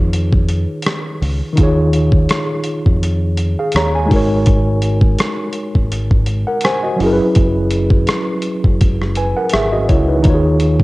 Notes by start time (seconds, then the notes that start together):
Already playing: F2 D#3 D#4 F4 G#4 B4 C#5
0.13 closed hi-hat
0.33 kick
0.49 closed hi-hat
0.82 closed hi-hat
0.86 cross-stick
1.22 C#2, open hi-hat
1.53 D#3 D#4
1.57 D#2 F4 G#4, kick, closed hi-hat
1.63 C#5
1.93 closed hi-hat
2.12 kick
2.29 cross-stick, closed hi-hat
2.64 closed hi-hat
2.86 F2, kick
3.03 closed hi-hat
3.37 closed hi-hat
3.59 G#4 F5
3.72 D#2 A#5, closed hi-hat
3.76 C#5, cross-stick
3.95 G#5
4.06 G#3 D#4
4.11 G#1 F#4 A#4, kick, open hi-hat
4.16 C#5
4.46 kick, closed hi-hat
4.82 closed hi-hat
5.01 kick
5.18 cross-stick, closed hi-hat
5.53 closed hi-hat
5.75 G#1, kick
5.92 closed hi-hat
6.11 kick
6.26 closed hi-hat
6.47 A#4 F#5
6.61 C5 G#5, closed hi-hat
6.65 cross-stick
6.83 F#4 D#5
6.96 F#1 F#3 C#4
7.00 E4 G#4, open hi-hat
7.06 A#4
7.13 B4
7.35 F#1, kick, closed hi-hat
7.71 closed hi-hat
7.90 kick
8.07 cross-stick, closed hi-hat
8.42 closed hi-hat
8.64 F#1, kick
8.81 kick, closed hi-hat
9.02 cross-stick
9.15 B4 G#5, closed hi-hat
9.37 A#4 F#5
9.50 E5, closed hi-hat
9.54 G#1 G#4, cross-stick
9.72 F#4 D#5
9.89 C#2 E4 C#5, kick, closed hi-hat
10.08 D#4 B4
10.20 D#3 D#4
10.24 D#2 F4 F#4, kick, closed hi-hat
10.30 C#5
10.34 G#4
10.60 closed hi-hat
10.80 kick